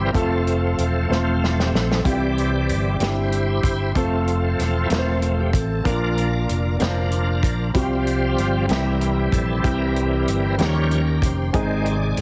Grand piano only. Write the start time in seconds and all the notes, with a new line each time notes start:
Already playing: C3 G3 C4 E4 G4
0.13 A3 C4 F4 A4
1.08 A3 C4 F4 C5
2.04 C3 G3 C4 E4 F4
2.12 G4
3.00 G3 C4 D4 G4
3.07 E4
3.95 A3 C4 F4 A4
4.90 A3 C4 F4 A#4
4.98 C5
5.84 A#2 A#3 D4 F4 A#4
6.79 A#3 D4 F4 C5
7.74 C3 G3 C4 F4 F#4
7.82 G4
8.67 C3 G3 C4 E4 G4
9.62 G3 C4 E4 G4
10.57 D#3 A#3 C#4 D#4 G4
11.53 C3 G#3 C4 D#4 G#4